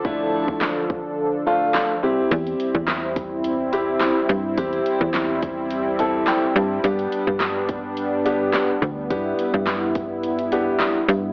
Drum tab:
HH |----------------|xxx-x-x-x-x-x-x-|xxx-x-x-x-x-x-x-|xxx-x-x-x-x-x-x-|
CP |----x-------x---|----x-------x---|----x-------x---|----x-------x---|
SD |----o-------o---|----o-------o---|----o-------o---|----o-------o---|
BD |o--o--o---------|o--o--o-------o-|o--o--o---------|o--o--o-------o-|

HH |x-x-x-x-xxx-x-x-|
CP |----x-------x---|
SD |----o-------o---|
BD |o--o--o---------|